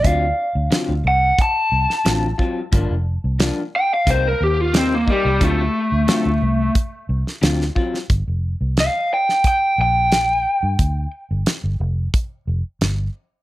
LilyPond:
<<
  \new Staff \with { instrumentName = "Overdriven electric guitar" } { \time 4/4 \key g \minor \tempo 4 = 89 eis''4. fis''8 a''2~ | a''4 r8 g''16 f''16 c''16 bes'16 g'16 f'16 c'16 bes16 g8 | a2 r2 | r4 f''8 g''8 g''8 g''4.~ |
g''8 r2. r8 | }
  \new Staff \with { instrumentName = "Clean electric guitar" } { \time 4/4 \key g \minor <d fis c' eis'>8 r8 <d fis c' eis'>8 r4. <d fis c' eis'>8 <fis c' eis'>8 | <g, f bes d'>8 r8 <g, f bes d'>8 r8 <c g bes ees'>8 r8 <c g bes ees'>8 <g bes ees'>8 | <d fis c' eis'>8 r8 <d fis c' eis'>8 r4. <d fis c' eis'>8 <fis c' eis'>8 | r1 |
r1 | }
  \new Staff \with { instrumentName = "Fingered electric bass" } { \clef bass \time 4/4 \key g \minor d,8 r16 d,16 r16 d,16 c,8 r8 c,16 r16 a,,8 r8 | g,,16 f,,8 c,8 r8. c,8 ees,4~ ees,16 c,16 | d,8 r16 d,16 r16 d,16 c,8 r8 c,16 r16 d,8 r8 | g,,16 f,,8 c,8 r4 r16 bes,,4~ bes,,16 g,16 |
d,8 r16 g,,16 r16 g,,16 f,,8 r8 f,,16 r16 g,,8 r8 | }
  \new DrumStaff \with { instrumentName = "Drums" } \drummode { \time 4/4 <hh bd>4 <hh sn>4 <hh bd>8. sn16 <hh sn>8 bd8 | <hh bd>4 <hh sn>4 <hh bd>4 <hh sn>8 bd8 | <hh bd>4 <hh sn>4 <hh bd>8. sn16 <hh sn>16 sn16 bd16 sn16 | <hh bd>4 <hh sn>8. sn16 <hh bd>4 <hh sn>4 |
<hh bd>4 <hh sn>4 <hh bd>4 <hh sn>4 | }
>>